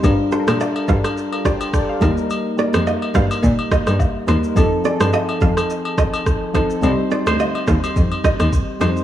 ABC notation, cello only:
X:1
M:4/4
L:1/16
Q:"Swing 16ths" 1/4=106
K:Eblyd
V:1 name="Cello" clef=bass
G,,3 B,,2 z G,,3 z4 z E,,2- | E,,2 z F,,2 z G,,2 B,,3 G,, z2 E,,2 | F,,3 G,,2 z F,,3 z6 z | C,,3 D,,2 z E,,2 F,,3 E,, z2 F,,2 |]